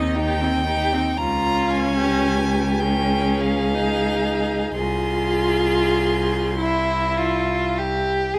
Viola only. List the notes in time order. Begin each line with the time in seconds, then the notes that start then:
Already playing: C4
0.16 D#4
0.41 C4
0.67 D#4
0.93 C4
1.18 C#4
2.81 C#4
3.74 D#4
4.76 F4
6.58 E4
8.35 C4